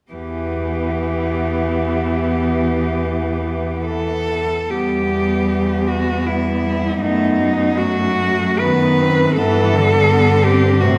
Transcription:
0.12 4.45 E2 soft
0.12 4.45 E3 soft
0.12 4.45 B3 soft
0.12 3.82 G4 soft
3.85 4.72 A4 medium
4.70 6.98 E2 soft
4.70 6.22 G3 soft
4.70 5.07 B3 soft
4.70 5.89 G4 soft
5.09 6.98 B3 soft
5.88 6.28 F#4 soft
6.26 7.03 G3 soft
6.26 7.00 E4 soft
7.00 9.33 F#2 soft
7.00 7.41 A3 soft
7.00 7.80 B3 soft
7.00 7.78 D#4 medium
7.39 8.63 F#3 soft
7.77 8.19 A3 soft
7.77 8.61 F#4 medium
8.20 8.64 A3 soft
8.59 9.37 D#3 soft
8.59 9.03 B3 soft
8.59 9.35 B4 medium
9.01 9.39 C4 soft
9.36 10.84 G2 soft
9.36 9.75 E3 medium
9.36 10.09 B3 soft
9.36 10.46 A4 medium
9.73 10.83 D3 soft
10.10 10.45 B3 medium
10.45 10.82 C4 soft
10.45 10.82 G4 medium
10.80 10.98 A2 soft
10.80 10.98 C3 soft
10.80 10.98 C4 soft
10.80 10.98 F#4 medium

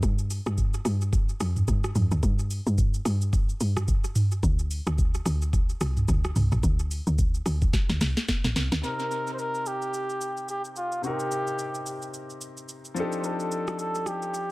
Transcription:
0.03 0.41 G2 loud
0.03 kick loud
0.03 shaker medium
0.19 shaker medium
0.30 open hi-hat medium
0.30 shaker medium
0.46 0.80 G2 loud
0.46 cross-stick loud
0.46 shaker medium
0.58 kick loud
0.58 shaker medium
0.74 shaker medium
0.85 1.33 G2 loud
0.85 cross-stick medium
0.85 open hi-hat medium
0.85 shaker loud
1.01 shaker soft
1.13 kick loud
1.13 shaker medium
1.29 shaker soft
1.40 1.64 F2 medium
1.40 cross-stick loud
1.40 open hi-hat medium
1.40 shaker loud
1.56 mid tom medium
1.56 shaker medium
1.68 1.92 G2 medium
1.68 kick medium
1.68 shaker medium
1.84 cross-stick loud
1.84 shaker medium
1.95 2.09 F2 medium
1.95 mid tom medium
1.95 open hi-hat medium
1.95 shaker medium
2.11 2.21 D2 loud
2.11 shaker medium
2.23 2.61 G2 loud
2.23 kick loud
2.23 shaker medium
2.39 shaker medium
2.51 open hi-hat medium
2.51 shaker medium
2.66 3.00 G2 loud
2.66 shaker medium
2.78 kick loud
2.78 shaker medium
2.94 shaker medium
3.05 3.53 G2 loud
3.05 cross-stick medium
3.05 open hi-hat medium
3.05 shaker loud
3.21 shaker soft
3.33 kick loud
3.33 shaker medium
3.49 shaker soft
3.60 3.84 G2 medium
3.60 open hi-hat medium
3.60 shaker loud
3.77 cross-stick loud
3.77 mid tom medium
3.77 shaker medium
3.88 kick medium
3.88 shaker medium
4.04 shaker medium
4.15 mid tom medium
4.15 open hi-hat medium
4.15 shaker medium
4.31 shaker medium
4.43 4.81 D2 loud
4.43 kick loud
4.43 shaker medium
4.59 shaker medium
4.71 open hi-hat medium
4.71 shaker medium
4.87 5.21 D2 loud
4.87 cross-stick loud
4.87 shaker medium
4.98 kick loud
4.98 shaker medium
5.14 shaker medium
5.26 5.73 D2 loud
5.26 cross-stick medium
5.26 open hi-hat medium
5.26 shaker loud
5.42 shaker medium
5.53 kick loud
5.53 shaker medium
5.69 shaker soft
5.81 6.05 C2 medium
5.81 cross-stick loud
5.81 open hi-hat medium
5.81 shaker loud
5.97 mid tom medium
5.97 shaker medium
6.08 6.32 D2 loud
6.08 kick medium
6.08 shaker medium
6.24 cross-stick loud
6.24 shaker medium
6.36 6.50 C2 medium
6.36 mid tom medium
6.36 open hi-hat medium
6.36 shaker medium
6.52 6.62 A1 medium
6.52 shaker medium
6.63 7.01 D2 loud
6.63 kick loud
6.63 shaker medium
6.79 shaker medium
6.91 open hi-hat medium
6.91 shaker loud
7.07 7.41 D2 loud
7.07 shaker medium
7.18 kick loud
7.18 shaker medium
7.34 shaker medium
7.46 7.70 D2 loud
7.46 cross-stick medium
7.46 open hi-hat medium
7.46 shaker loud
7.62 kick loud
7.62 shaker medium
7.73 kick loud
7.73 snare medium
7.73 shaker medium
7.89 7.99 D2 medium
7.89 snare medium
7.89 shaker soft
8.01 8.15 C2 loud
8.01 snare medium
8.01 open hi-hat medium
8.01 shaker loud
8.17 snare medium
8.17 shaker medium
8.28 kick medium
8.28 snare medium
8.28 shaker medium
8.44 8.54 A1 medium
8.44 snare medium
8.44 shaker medium
8.56 8.70 C2 medium
8.56 snare loud
8.56 open hi-hat medium
8.56 shaker medium
8.72 8.82 D2 loud
8.72 snare loud
8.72 shaker medium
8.82 10.99 C3 medium
8.82 11.00 C4 medium
8.82 11.00 D#4 medium
8.82 9.30 A#4 loud
8.82 shaker medium
8.87 11.01 A#4 medium
8.99 shaker medium
9.11 shaker medium
9.27 shaker medium
9.34 9.41 C5 medium
9.39 9.69 A#4 loud
9.39 shaker medium
9.54 shaker soft
9.66 10.49 G4 loud
9.66 shaker medium
9.82 shaker soft
9.94 shaker medium
10.10 shaker soft
10.21 shaker medium
10.37 shaker medium
10.48 10.62 G4 medium
10.48 shaker medium
10.64 shaker medium
10.76 11.02 F4 medium
10.76 shaker medium
10.92 shaker soft
11.02 12.92 C3 medium
11.02 12.92 C4 medium
11.02 12.93 D#4 medium
11.02 12.10 G4 medium
11.02 shaker medium
11.07 12.94 A#4 medium
11.19 shaker medium
11.31 shaker medium
11.47 shaker medium
11.59 shaker medium
11.75 shaker medium
11.86 shaker medium
12.02 shaker soft
12.14 shaker medium
12.30 shaker soft
12.41 shaker loud
12.57 shaker medium
12.69 shaker medium
12.85 shaker medium
12.94 14.52 F3 medium
12.94 14.52 C4 medium
12.94 14.52 D4 medium
12.94 14.52 D#4 medium
12.94 shaker medium
12.99 14.52 G4 medium
12.99 14.52 A4 medium
13.12 shaker soft
13.19 13.27 C5 medium
13.24 13.80 A4 medium
13.24 shaker medium
13.40 shaker medium
13.52 shaker medium
13.67 cross-stick loud
13.67 shaker medium
13.79 14.09 A4 medium
13.79 shaker medium
13.95 shaker medium
14.06 14.52 G4 medium
14.06 cross-stick medium
14.06 shaker medium
14.22 shaker soft
14.34 shaker medium

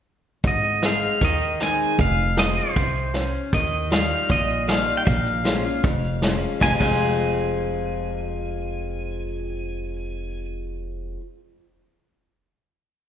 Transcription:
0.44 1.04 G#1 medium
0.44 1.17 G#2 medium
0.44 0.86 D#5 medium
0.44 kick loud
0.44 closed hi-hat medium
0.63 closed hi-hat medium
0.82 1.20 G#3 soft
0.82 1.20 C4 soft
0.82 1.20 D#4 medium
0.82 1.21 G#4 medium
0.82 1.24 F5 medium
0.82 snare loud
0.82 closed hi-hat medium
1.02 closed hi-hat medium
1.21 1.81 D#2 medium
1.21 1.95 D#3 medium
1.21 1.63 D#5 medium
1.21 kick loud
1.21 closed hi-hat medium
1.41 closed hi-hat medium
1.60 1.97 G#3 soft
1.60 1.97 C4 medium
1.60 1.97 D#4 medium
1.60 1.98 G#4 medium
1.60 2.00 G#5 medium
1.60 snare medium
1.60 closed hi-hat medium
1.79 closed hi-hat medium
1.98 2.58 F1 medium
1.98 2.72 F2 medium
1.98 2.39 F5 medium
1.98 kick loud
1.98 closed hi-hat medium
2.18 closed hi-hat medium
2.37 2.74 F3 medium
2.37 2.75 G#3 medium
2.37 2.75 C4 medium
2.37 2.75 F4 medium
2.37 2.58 D#5 medium
2.37 snare loud
2.37 closed hi-hat medium
2.57 3.34 C5 medium
2.57 closed hi-hat medium
2.76 3.36 C2 medium
2.76 3.13 C3 medium
2.76 kick loud
2.76 closed hi-hat medium
2.95 closed hi-hat medium
3.14 3.51 C#4 medium
3.14 snare medium
3.14 closed hi-hat medium
3.33 closed hi-hat soft
3.53 4.12 D#2 medium
3.53 3.89 D#3 medium
3.53 3.93 D#5 medium
3.53 kick loud
3.53 closed hi-hat medium
3.72 closed hi-hat medium
3.90 4.27 D#3 soft
3.90 4.28 G3 medium
3.90 4.28 D#4 medium
3.90 4.28 F4 medium
3.90 4.31 F5 medium
3.90 snare loud
3.90 closed hi-hat medium
4.11 closed hi-hat medium
4.29 4.89 A#1 medium
4.29 5.03 A#2 medium
4.29 4.70 D#5 medium
4.29 kick medium
4.29 closed hi-hat medium
4.49 closed hi-hat medium
4.67 5.04 D#3 medium
4.67 5.05 G3 medium
4.67 5.05 D#4 medium
4.67 5.05 F4 medium
4.67 4.97 F5 medium
4.67 snare loud
4.67 closed hi-hat medium
4.88 closed hi-hat medium
4.97 5.05 G5 medium
5.06 5.66 A#1 medium
5.06 5.80 A#2 medium
5.06 6.22 F5 medium
5.06 kick loud
5.06 closed hi-hat medium
5.26 closed hi-hat medium
5.44 5.63 F3 medium
5.44 5.64 G#3 medium
5.44 5.64 C#4 medium
5.44 5.63 F4 medium
5.44 snare medium
5.44 closed hi-hat medium
5.64 5.84 C#4 soft
5.64 5.83 F4 soft
5.64 closed hi-hat soft
5.83 6.43 F1 medium
5.83 6.57 F2 medium
5.83 kick loud
5.83 closed hi-hat medium
6.03 closed hi-hat medium
6.22 6.59 F3 soft
6.22 6.59 G#3 soft
6.22 6.60 C#4 medium
6.22 6.60 F4 medium
6.22 snare loud
6.22 closed hi-hat medium
6.42 closed hi-hat soft
6.60 6.72 F1 medium
6.60 6.79 F2 medium
6.60 6.80 C3 medium
6.60 6.80 F3 medium
6.60 6.81 G#3 medium
6.60 6.81 C4 medium
6.60 6.82 F4 medium
6.60 6.73 G#5 medium
6.60 kick medium
6.60 snare medium
6.79 11.16 F1 medium
6.79 11.19 F2 medium
6.79 11.20 C3 medium
6.79 11.20 F3 medium
6.79 11.21 G#3 medium
6.79 11.21 C4 medium
6.79 11.21 F4 medium
6.79 10.47 G#5 medium
6.79 kick medium
6.79 crash medium

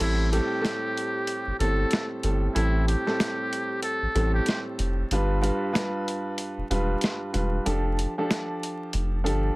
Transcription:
0.00 0.40 A1 loud
0.00 0.28 A2 medium
0.00 0.28 G3 medium
0.00 0.28 C4 medium
0.00 0.29 E4 medium
0.00 0.28 A4 loud
0.00 closed hi-hat medium
0.00 crash medium
0.32 0.59 A2 medium
0.32 0.60 G3 medium
0.32 0.60 C4 medium
0.32 1.56 G4 medium
0.32 0.60 A4 loud
0.32 closed hi-hat medium
0.61 1.52 A2 loud
0.61 1.52 G3 medium
0.61 1.52 C4 medium
0.61 1.52 A4 loud
0.61 snare loud
0.66 closed hi-hat medium
0.97 closed hi-hat medium
1.27 closed hi-hat medium
1.47 1.52 G1 soft
1.59 1.85 G1 medium
1.59 2.20 A2 medium
1.59 2.20 G3 medium
1.59 2.20 C4 medium
1.59 2.07 A4 medium
1.59 2.20 A4 loud
1.59 closed hi-hat medium
1.91 snare loud
1.91 closed hi-hat medium
2.23 2.48 G1 medium
2.23 2.53 A2 medium
2.23 2.53 G3 medium
2.23 2.53 C4 medium
2.23 2.54 A4 medium
2.23 closed hi-hat medium
2.55 2.95 A1 loud
2.55 3.01 A2 medium
2.55 3.02 G3 medium
2.55 3.02 C4 medium
2.55 2.84 E4 medium
2.55 3.02 A4 loud
2.55 closed hi-hat medium
2.88 3.79 G4 medium
2.88 closed hi-hat medium
3.06 4.08 A2 medium
3.06 4.08 G3 medium
3.06 4.08 C4 medium
3.06 4.08 A4 loud
3.06 snare soft
3.20 snare loud
3.20 closed hi-hat medium
3.53 closed hi-hat medium
3.83 4.31 A4 medium
3.83 closed hi-hat medium
4.02 4.07 A1 soft
4.15 4.40 A1 medium
4.15 5.04 A2 medium
4.15 5.05 G3 medium
4.15 5.05 C4 medium
4.15 5.05 A4 loud
4.15 closed hi-hat medium
4.34 4.63 G4 medium
4.46 snare loud
4.46 closed hi-hat medium
4.79 5.04 F1 medium
4.79 closed hi-hat medium
5.10 5.51 G1 loud
5.10 5.40 G2 medium
5.10 5.40 G3 medium
5.10 5.41 F4 medium
5.10 5.41 B4 loud
5.10 closed hi-hat loud
5.42 5.71 G2 medium
5.42 5.72 G3 medium
5.42 5.72 F4 medium
5.42 5.72 B4 loud
5.42 closed hi-hat medium
5.73 6.63 G2 medium
5.73 6.63 G3 medium
5.73 6.63 F4 medium
5.73 6.64 B4 loud
5.73 snare loud
5.73 closed hi-hat medium
6.08 closed hi-hat medium
6.38 closed hi-hat medium
6.57 6.62 E1 soft
6.70 6.95 E1 medium
6.70 7.30 G2 medium
6.70 7.30 G3 medium
6.70 7.30 F4 medium
6.70 7.30 B4 loud
6.70 closed hi-hat medium
7.01 snare loud
7.01 closed hi-hat medium
7.33 7.59 E1 medium
7.33 7.63 G2 medium
7.33 7.63 G3 medium
7.33 7.64 F4 medium
7.33 7.64 B4 medium
7.33 closed hi-hat medium
7.65 8.06 F1 loud
7.65 8.12 F3 medium
7.65 8.12 D4 medium
7.65 8.12 G4 medium
7.65 8.12 A4 medium
7.65 closed hi-hat loud
7.99 closed hi-hat medium
8.18 9.19 F3 medium
8.18 9.19 D4 medium
8.18 9.19 G4 medium
8.18 9.19 A4 loud
8.31 snare loud
8.31 closed hi-hat medium
8.63 closed hi-hat medium
8.93 9.27 F1 loud
8.93 closed hi-hat medium
9.24 9.51 G1 medium
9.24 9.56 F3 medium
9.24 9.56 D4 medium
9.24 9.56 G4 medium
9.24 9.56 A4 medium
9.24 closed hi-hat medium

